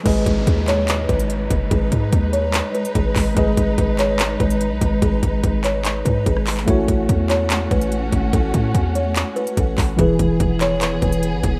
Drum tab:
CC |x---------------|----------------|----------------|----------------|
HH |x-x-x-x-x-xxx-x-|x-x-x-x-x-xxx-o-|x-x-x-x-x-xxx-x-|x-x-x-x-x-x-x-o-|
CP |------x-x-------|--------x-----x-|------x-x-------|------x-x-----xx|
SD |----------------|----------------|----------------|-------------r--|
BD |o-o-o-----o---o-|o-o-o-------o-o-|o-o-o-----o---o-|o-o-o-----o-o---|

CC |----------------|----------------|----------------|
HH |x-x-x-x-x-xxx-x-|x-x-x-x-x-xxx-o-|x-x-x-x-x-xxx-x-|
CP |------x-x-------|--------x-----x-|------x-x-------|
SD |----------------|----------------|----------------|
BD |o-o-o-----o---o-|o-o-o-------o-o-|o-o-o-----o---o-|